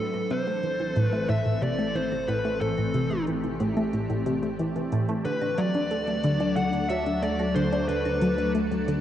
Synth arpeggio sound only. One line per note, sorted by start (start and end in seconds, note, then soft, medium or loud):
0.14 0.21 A2 medium
0.31 0.46 C3 medium
0.47 0.54 A3 medium
0.64 0.79 E3 medium
0.80 0.92 E3 medium
0.97 1.08 A2 medium
1.13 1.20 A3 medium
1.29 1.41 A2 medium
1.46 1.53 A2 medium
1.62 1.78 C3 medium
1.79 1.86 A3 medium
1.95 2.11 E3 medium
2.12 2.23 E3 medium
2.28 2.40 A2 loud
2.45 2.52 A3 loud
2.61 2.73 A2 medium
2.78 2.85 A2 medium
2.94 3.10 C3 medium
3.11 3.18 A3 medium
3.28 3.43 E3 medium
3.44 3.55 E3 medium
3.60 3.72 A2 loud
3.77 3.84 A3 loud
3.93 4.05 A2 medium
4.10 4.17 A2 medium
4.26 4.42 C3 loud
4.43 4.50 A3 medium
4.59 4.75 E3 medium
4.76 4.87 E3 medium
4.92 5.04 A2 loud
5.09 5.16 A3 loud
5.25 5.36 D3 medium
5.42 5.48 D3 medium
5.58 5.74 F#3 medium
5.75 5.82 D4 medium
5.91 6.07 A3 medium
6.08 6.19 A3 medium
6.24 6.36 D3 medium
6.41 6.47 D4 medium
6.57 6.68 D3 medium
6.74 6.80 D3 medium
6.90 7.06 F#3 loud
7.07 7.13 D4 medium
7.23 7.38 A3 medium
7.39 7.51 A3 medium
7.56 7.67 D3 loud
7.72 7.79 D4 loud
7.89 8.00 D3 medium
8.05 8.12 D3 medium
8.22 8.37 F#3 loud
8.38 8.45 D4 medium
8.55 8.70 A3 medium
8.71 8.83 A3 medium
8.88 8.99 D3 loud